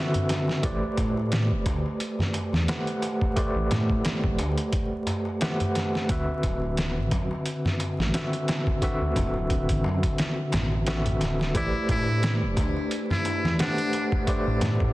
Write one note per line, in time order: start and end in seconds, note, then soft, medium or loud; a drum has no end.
0.00 0.60 D3 medium
0.00 0.60 C4 medium
0.00 0.60 F#4 medium
0.00 0.60 B4 medium
0.00 0.61 E5 medium
0.14 closed hi-hat soft
0.14 darbuka dum soft
0.29 snare soft
0.29 closed hi-hat medium
0.29 darbuka tek medium
0.48 snare soft
0.48 darbuka tek medium
0.63 0.80 A1 loud
0.63 2.64 A3 medium
0.63 2.64 G4 medium
0.63 2.65 B4 medium
0.63 2.65 C5 medium
0.63 2.65 D5 loud
0.63 kick medium
0.63 closed hi-hat medium
0.97 1.53 A2 medium
0.97 kick medium
0.97 closed hi-hat medium
0.97 darbuka tek medium
1.17 darbuka tek soft
1.32 snare medium
1.32 closed hi-hat medium
1.32 darbuka tek soft
1.51 1.64 E1 medium
1.66 1.83 D2 loud
1.66 kick medium
1.66 closed hi-hat medium
1.66 darbuka tek medium
1.86 darbuka tek soft
2.00 closed hi-hat medium
2.00 darbuka tek soft
2.19 snare soft
2.19 darbuka dum medium
2.33 closed hi-hat medium
2.33 darbuka tek medium
2.53 2.66 E2 loud
2.53 snare soft
2.53 darbuka tek soft
2.68 3.33 A3 medium
2.68 3.33 G4 medium
2.68 3.33 B4 medium
2.68 3.33 C5 medium
2.68 3.33 F#5 medium
2.68 snare loud
2.68 closed hi-hat medium
2.68 darbuka tek soft
2.87 closed hi-hat soft
3.02 closed hi-hat medium
3.02 darbuka tek medium
3.21 kick medium
3.21 darbuka tek soft
3.36 5.37 A3 medium
3.36 5.37 G4 medium
3.36 5.38 B4 medium
3.36 5.38 C5 medium
3.36 5.38 D5 medium
3.36 kick loud
3.36 closed hi-hat medium
3.36 darbuka tek soft
3.55 3.69 A1 medium
3.71 4.25 A2 loud
3.71 snare soft
3.71 closed hi-hat medium
3.71 darbuka tek medium
3.71 darbuka dum medium
3.90 kick medium
3.90 darbuka tek soft
4.05 snare medium
4.05 closed hi-hat medium
4.05 darbuka tek soft
4.24 4.37 E1 medium
4.24 kick medium
4.39 4.56 D2 loud
4.39 closed hi-hat medium
4.39 darbuka tek medium
4.58 closed hi-hat soft
4.58 darbuka tek soft
4.73 kick loud
4.73 closed hi-hat medium
4.73 darbuka tek soft
5.06 closed hi-hat medium
5.06 darbuka tek medium
5.06 darbuka dum soft
5.25 darbuka tek soft
5.41 6.06 A3 medium
5.41 6.06 G4 medium
5.41 6.06 B4 medium
5.41 6.06 C5 medium
5.41 6.06 F#5 medium
5.41 snare loud
5.41 closed hi-hat medium
5.41 darbuka tek soft
5.60 closed hi-hat soft
5.60 darbuka dum medium
5.75 snare soft
5.75 closed hi-hat medium
5.75 darbuka tek medium
5.94 snare soft
5.94 darbuka tek soft
6.09 6.26 D2 medium
6.09 8.10 D3 medium
6.09 8.10 C4 medium
6.09 8.11 F#4 medium
6.09 8.11 B4 medium
6.09 8.11 E5 loud
6.09 kick loud
6.09 closed hi-hat medium
6.09 darbuka tek soft
6.43 6.98 D1 medium
6.43 kick medium
6.43 closed hi-hat medium
6.43 darbuka tek medium
6.62 darbuka tek soft
6.77 snare medium
6.77 closed hi-hat medium
6.77 darbuka tek soft
6.97 7.10 A1 medium
7.11 7.28 F#2 medium
7.11 kick medium
7.11 closed hi-hat medium
7.11 darbuka tek medium
7.31 darbuka tek soft
7.46 closed hi-hat medium
7.46 darbuka tek soft
7.65 snare soft
7.65 darbuka dum medium
7.80 closed hi-hat medium
7.80 darbuka tek medium
7.99 8.12 A1 medium
7.99 snare soft
7.99 darbuka tek soft
8.14 8.78 D3 medium
8.14 8.79 C4 medium
8.14 8.79 F#4 medium
8.14 8.79 B4 medium
8.14 8.79 E5 medium
8.14 snare loud
8.14 closed hi-hat medium
8.14 darbuka tek soft
8.33 closed hi-hat soft
8.48 snare medium
8.48 closed hi-hat medium
8.48 darbuka tek medium
8.67 kick medium
8.67 darbuka tek soft
8.81 10.83 D3 medium
8.81 10.83 C4 medium
8.81 10.83 F#4 medium
8.81 10.84 B4 medium
8.81 10.84 E5 loud
8.81 kick medium
8.81 closed hi-hat medium
9.01 9.14 D2 medium
9.16 9.71 D1 medium
9.16 kick medium
9.16 closed hi-hat medium
9.16 darbuka tek medium
9.16 darbuka dum medium
9.34 darbuka tek soft
9.50 kick medium
9.50 closed hi-hat medium
9.50 darbuka tek soft
9.69 9.82 A1 medium
9.69 kick medium
9.69 closed hi-hat medium
9.84 10.01 F#2 loud
9.84 darbuka tek medium
10.03 kick medium
10.03 closed hi-hat medium
10.03 darbuka tek soft
10.18 snare loud
10.18 closed hi-hat medium
10.18 darbuka tek soft
10.52 11.18 A1 medium
10.52 snare medium
10.52 closed hi-hat medium
10.52 darbuka tek medium
10.52 darbuka dum medium
10.72 darbuka tek soft
10.87 11.51 D3 medium
10.87 11.51 C4 medium
10.87 11.52 F#4 medium
10.87 11.52 B4 medium
10.87 11.52 E5 medium
10.87 snare loud
10.87 closed hi-hat medium
11.05 closed hi-hat soft
11.05 darbuka dum medium
11.21 11.51 D1 medium
11.21 snare soft
11.21 closed hi-hat medium
11.21 darbuka tek medium
11.40 snare soft
11.40 darbuka tek medium
11.54 11.72 A1 medium
11.54 13.55 A3 medium
11.54 14.93 D4 medium
11.54 11.86 E4 medium
11.54 13.56 G4 medium
11.54 13.56 B4 medium
11.54 13.56 C5 medium
11.54 13.57 D5 loud
11.54 kick loud
11.54 closed hi-hat medium
11.54 darbuka tek soft
11.89 12.43 A2 loud
11.89 12.37 E4 medium
11.89 kick medium
11.89 closed hi-hat medium
11.89 darbuka tek medium
12.08 darbuka tek medium
12.23 snare loud
12.23 closed hi-hat medium
12.23 darbuka tek soft
12.42 12.55 E1 medium
12.57 12.74 D2 loud
12.57 kick medium
12.57 closed hi-hat medium
12.57 darbuka tek medium
12.77 darbuka tek medium
12.91 closed hi-hat medium
12.91 darbuka tek soft
13.10 13.55 E4 medium
13.10 snare soft
13.10 darbuka dum medium
13.25 closed hi-hat medium
13.25 darbuka tek medium
13.44 13.57 E2 loud
13.44 snare soft
13.44 darbuka tek soft
13.59 14.24 A3 medium
13.59 14.07 D4 medium
13.59 14.24 G4 medium
13.59 14.24 B4 medium
13.59 14.24 C5 medium
13.59 14.25 F#5 medium
13.59 snare loud
13.59 closed hi-hat medium
13.59 darbuka tek soft
13.78 closed hi-hat soft
13.93 closed hi-hat medium
13.93 darbuka tek medium
14.12 kick medium
14.12 darbuka tek medium
14.27 14.93 A3 medium
14.27 14.93 G4 medium
14.27 14.93 B4 medium
14.27 14.93 C5 medium
14.27 14.93 D5 medium
14.27 kick loud
14.27 closed hi-hat medium
14.27 darbuka tek soft
14.47 14.60 A1 medium
14.61 14.93 A2 loud
14.61 snare soft
14.61 closed hi-hat medium
14.61 darbuka tek medium
14.61 darbuka dum medium
14.80 kick medium
14.80 darbuka tek soft